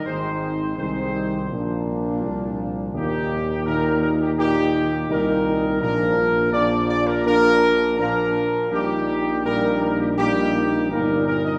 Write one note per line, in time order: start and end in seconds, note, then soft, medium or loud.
0.05 0.74 G#1 medium
0.05 0.61 D#3 medium
0.05 0.61 G#3 medium
0.05 0.77 C4 medium
0.05 0.75 D#4 medium
0.05 0.74 C5 medium
0.78 1.51 C2 medium
0.78 1.46 D#3 medium
0.78 1.12 G#3 medium
0.78 1.46 C4 medium
0.78 1.46 D#4 medium
0.78 1.82 C5 medium
1.14 1.48 G3 medium
1.49 2.24 A#1 medium
1.49 2.94 A#2 medium
1.49 2.94 F3 medium
1.49 2.94 A#3 medium
1.49 2.95 D4 medium
2.23 2.94 C2 medium
2.94 5.05 D#2 medium
2.94 3.63 A#2 medium
2.94 3.66 D#3 medium
2.94 3.62 A#3 medium
2.94 3.62 D#4 medium
2.94 3.62 G4 loud
3.65 4.34 A#2 medium
3.65 4.34 D#3 medium
3.65 4.35 A#3 medium
3.65 4.34 D#4 medium
3.65 3.99 A#4 medium
4.01 4.09 A#4 medium
4.22 4.29 G4 medium
4.38 5.05 A#2 medium
4.38 5.05 D#3 medium
4.38 4.93 A#3 medium
4.38 4.93 D#4 medium
4.38 5.05 G4 loud
5.09 5.83 C2 medium
5.09 5.77 A#2 medium
5.09 5.77 D#3 medium
5.09 5.78 A#3 medium
5.09 5.78 D#4 medium
5.09 5.78 A#4 medium
5.81 8.45 A#1 medium
5.81 6.49 A#2 medium
5.81 6.51 F3 medium
5.81 6.49 A#3 medium
5.81 6.53 D4 medium
5.81 6.50 A#4 loud
6.52 7.21 A#2 medium
6.52 7.21 F3 medium
6.52 7.22 A#3 medium
6.52 7.22 D4 medium
6.52 6.86 D5 loud
6.89 7.06 D5 loud
7.07 7.24 A#4 medium
7.25 7.95 A#2 medium
7.25 7.95 F3 medium
7.25 7.96 A#3 medium
7.25 7.96 D4 medium
7.25 7.95 A#4 loud
7.98 8.68 A#2 medium
7.98 8.68 F3 medium
7.98 8.69 A#3 medium
7.98 8.68 D4 medium
7.98 8.68 A#4 loud
8.71 10.92 A#1 medium
8.71 9.27 A#2 medium
8.71 9.27 G3 medium
8.71 9.41 A#3 medium
8.71 9.44 D#4 medium
8.71 9.41 G4 loud
9.44 10.14 A#2 medium
9.44 10.14 G3 medium
9.44 10.14 A#3 medium
9.44 10.14 D#4 medium
9.44 9.79 A#4 loud
9.81 9.99 A#4 medium
9.99 10.07 G4 medium
10.17 10.87 A#2 medium
10.17 10.87 G3 medium
10.17 10.87 A#3 medium
10.17 10.87 D#4 medium
10.17 10.86 G4 loud
10.90 11.59 G1 medium
10.90 11.59 A#2 medium
10.90 11.59 G3 medium
10.90 11.59 A#3 medium
10.90 11.59 D#4 medium
10.90 11.25 A#4 medium
11.26 11.44 A#4 medium
11.45 11.53 D#5 medium